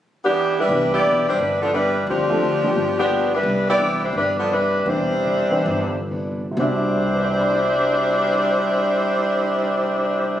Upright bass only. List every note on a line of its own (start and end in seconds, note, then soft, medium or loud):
0.69 1.01 C2 medium
1.04 1.36 B1 medium
1.37 2.03 G1 medium
2.07 2.72 D2 medium
2.75 3.40 G1 medium
3.43 4.10 C2 medium
4.13 4.83 G1 medium
4.86 5.62 E1 medium
5.66 6.52 G1 medium
6.57 10.40 C2 medium